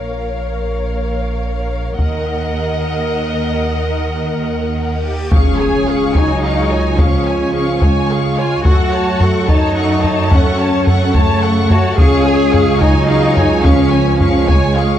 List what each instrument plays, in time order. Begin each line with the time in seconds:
Already playing: double bass section A#1, cello section A#2, viola section A#4, violin section C#5 F5
1.98 double bass section D#2, cello section D#3, viola section A#4, violin section D#5 F#5, taiko
3.66 reverse cymbal
5.04 french horn section A#3, cello section G4
5.31 double bass section C#2, trombone section G#3 F4, french horn section C#4, viola section G#4, cello section G#4, violin section F5 C#6, taiko, impact
5.59 viola section C#5, violin section G#5
5.87 viola section G#4, violin section F5 C#6
6.15 french horn section F#3, cello section D#4, viola section C#5, violin section G#5, taiko
6.42 viola section G#4, violin section F5 C#6
6.70 viola section C#5, violin section G#5
6.97 french horn section F3, cello section C#4, viola section G#4, violin section F5 C#6, taiko
7.26 viola section C#5, violin section G#5
7.54 viola section G#4, violin section F5 C#6
7.81 french horn section C#3, cello section G#3, viola section C#5, violin section G#5, taiko
8.09 viola section G#4, violin section F5 C#6
8.37 french horn section G#3, cello section F4, viola section C#5, violin section G#5
8.65 double bass section F#2, trombone section F#3 A3, french horn section A3, cello section F#4, viola section A4, violin section F#5 C#6, taiko
8.93 viola section C#5, violin section A5
9.20 viola section A4, violin section F#5 C#6, taiko low
9.48 french horn section F#3, cello section D#4, viola section C#5, violin section A5, taiko
9.76 viola section A4, violin section F#5 C#6
10.03 viola section C#5, violin section A5, taiko low
10.31 french horn section F#3, cello section C#4, viola section A4, violin section F#5 C#6, taiko
10.59 viola section C#5, violin section A5
10.86 viola section A4, violin section F#5 C#6, taiko low
11.14 french horn section C#3, cello section A3, viola section C#5, violin section A5, taiko
11.41 viola section A4, violin section F#5 C#6
11.69 french horn section A3, cello section F#4, viola section C#5, violin section A5, taiko low
11.97 double bass section C#2, trombone section G#3 F4, french horn section C#4, viola section G#4, cello section G#4, violin section F5 C#6, taiko
12.25 viola section C#5, violin section G#5
12.52 viola section G#4, violin section F5 C#6, taiko low
12.80 french horn section F#3, cello section D#4, viola section C#5, violin section G#5, taiko
13.07 viola section G#4, violin section F5 C#6
13.36 viola section C#5, violin section G#5, taiko low
13.63 french horn section F3, cello section C#4, viola section G#4, violin section F5 C#6, taiko
13.92 viola section C#5, violin section G#5
14.19 viola section G#4, violin section F5 C#6, taiko low
14.47 french horn section C#3, cello section G#3, viola section C#5, violin section G#5, taiko
14.75 viola section G#4, violin section F5 C#6